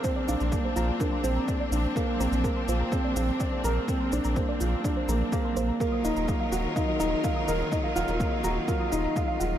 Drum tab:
SH |x-xxx-x-x-x-x-x-|x-xxx-x-x-x-x-x-|x-xxx-x-x-x-x-x-|x-xxx-x-x-x-x-x-|
BD |o---o---o---o---|o---o---o---o---|o---o---o---o---|o---o---o---o---|

SH |x-xxx-x-x-x-x-x-|
BD |o---o---o---o---|